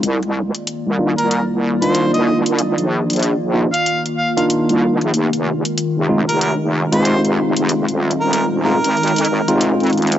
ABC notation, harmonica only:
X:1
M:4/4
L:1/16
Q:"Swing 16ths" 1/4=94
K:Cm
V:1 name="Harmonica"
z6 z B B z2 c2 e e z | z6 z f2 z f f z4 | z6 z B B z2 c2 z3 | z3 B B z B6 z4 |]